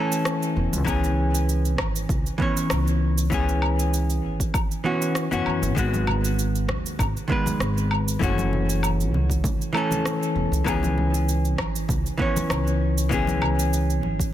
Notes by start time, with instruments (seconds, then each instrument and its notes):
Already playing: hollow-body jazz guitar E3 A3 C#4 A4
0.12 shaker
0.25 cross-stick, shaker
0.43 shaker
0.56 upright bass E1
0.73 upright bass C#2, shaker
0.85 upright bass C#2, hollow-body jazz guitar E3 B3 C#4, kick, low woodblock, shaker
0.89 hollow-body jazz guitar G#4
1.04 shaker
1.35 shaker
1.49 shaker
1.65 shaker
1.78 upright bass G#1, kick, cross-stick, low woodblock
1.96 shaker
2.09 upright bass C#2, kick, shaker
2.26 shaker
2.38 hollow-body jazz guitar E3 B3 C#4, kick
2.42 hollow-body jazz guitar C#5
2.57 shaker
2.70 upright bass C#2, cross-stick, low woodblock, shaker
2.87 shaker
3.18 shaker
3.30 upright bass C#2, hollow-body jazz guitar E3 B3 C#4, kick, shaker
3.34 hollow-body jazz guitar G#4
3.49 shaker
3.62 low woodblock
3.79 shaker
3.94 shaker
4.10 shaker
4.24 upright bass G#1
4.40 kick, shaker
4.54 kick, low woodblock, shaker
4.71 shaker
4.84 hollow-body jazz guitar E3 B3 C#4 F#4
5.02 shaker
5.15 cross-stick, shaker
5.31 upright bass F#2, hollow-body jazz guitar E3 B3 C#4 F#4, shaker
5.46 upright bass F#2, low woodblock
5.62 upright bass G#1, shaker
5.75 upright bass G#1, hollow-body jazz guitar D#3 G#3 B3, kick, shaker
5.79 hollow-body jazz guitar F#4
5.94 high conga, shaker
6.07 low conga, low woodblock
6.25 shaker
6.39 shaker
6.55 shaker
6.69 upright bass D#2, kick, cross-stick, high conga
6.86 shaker
6.99 upright bass G#1, kick, low conga, low woodblock, shaker
7.17 shaker
7.28 hollow-body jazz guitar D#3 G#3 B3, kick
7.32 hollow-body jazz guitar B4
7.46 high conga, low conga, shaker
7.60 upright bass G#1, cross-stick, shaker
7.78 shaker
7.91 low woodblock
8.08 shaker
8.19 upright bass F#1, hollow-body jazz guitar E3 A3 C#4, kick, shaker
8.23 hollow-body jazz guitar F#4
8.38 high conga, shaker
8.53 low conga
8.70 shaker
8.83 low woodblock, shaker
9.00 shaker
9.13 upright bass C#2, high conga
9.30 kick, shaker
9.44 kick, low conga, shaker
9.61 shaker
9.73 hollow-body jazz guitar E3 A3 C#4, low woodblock
9.77 hollow-body jazz guitar A4
9.91 high conga, low conga, shaker
10.05 cross-stick, shaker
10.23 shaker
10.35 upright bass E1
10.52 upright bass C#2, shaker
10.64 upright bass C#2, hollow-body jazz guitar E3 B3 C#4, kick, low woodblock, shaker
10.69 hollow-body jazz guitar G#4
10.83 high conga, shaker
10.98 low conga
11.14 shaker
11.29 shaker
11.45 shaker
11.58 upright bass G#1, kick, cross-stick, high conga, low woodblock
11.76 shaker
11.89 upright bass C#2, kick, low conga, shaker
12.06 shaker
12.17 hollow-body jazz guitar E3 B3 C#4, kick
12.22 hollow-body jazz guitar C#5
12.36 high conga, low conga, shaker
12.50 upright bass C#2, cross-stick, low woodblock, shaker
12.67 shaker
12.98 shaker
13.09 upright bass C#2, hollow-body jazz guitar E3 B3 C#4, kick, shaker
13.14 hollow-body jazz guitar G#4
13.27 high conga, shaker
13.41 low conga, low woodblock
13.59 shaker
13.73 shaker
13.90 shaker
14.03 upright bass G#1, high conga
14.20 kick, shaker